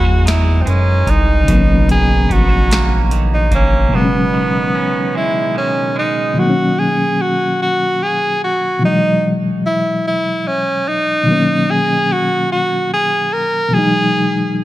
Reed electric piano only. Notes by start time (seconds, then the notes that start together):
Already playing: B2 E3 F#3 G#3 D#5
1.44 C#3 D#3
1.49 F#3 A#3
1.53 C4
1.60 C#4
3.89 B2 C#3
3.94 F#3 G#3
3.98 C4
4.05 C#4
6.34 B2 D#3
6.39 F#3 A#3
6.43 C4
6.50 C#4
8.79 B2 E3
8.84 F#3 G#3
8.89 D#5
11.23 B2 D#3
11.28 F#3 A#3
11.33 C#4
13.69 B2 E3
13.73 F#3 G#3
13.78 D#4